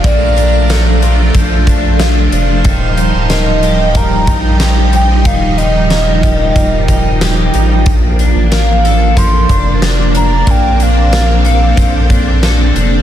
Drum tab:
HH |xxxxxxxx|xxxxxxxx|xxxxxxxx|xxxxxxxx|
TB |--x---x-|--x---x-|--x---x-|--x---x-|
SD |--o---o-|--o---o-|--o---o-|--o---o-|
BD |o---oo--|o---oo--|o--ooo--|o---oo--|

HH |xxxxxxxx|
TB |--x---x-|
SD |--o---o-|
BD |o---oo--|